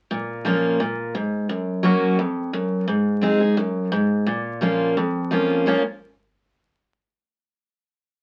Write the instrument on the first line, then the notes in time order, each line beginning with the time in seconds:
steel-string acoustic guitar
0.11 A#2
0.45 F3 A#3 C#4 F4
0.80 A#2
1.15 G#2
1.49 F#2
1.83 F#3 A#3 C#4 F#4
2.19 F2
2.53 F#2
2.88 G#2
3.21 G#3 C4 D#4 G#4
3.40 D#4 G#4
3.57 F#2
3.92 G#2
4.26 A#2
4.61 F3 A#3 C#4 F4
4.97 F2
5.31 F3 A#3 C#4 F4
5.66 A#2 F3 A#3 C#4 F4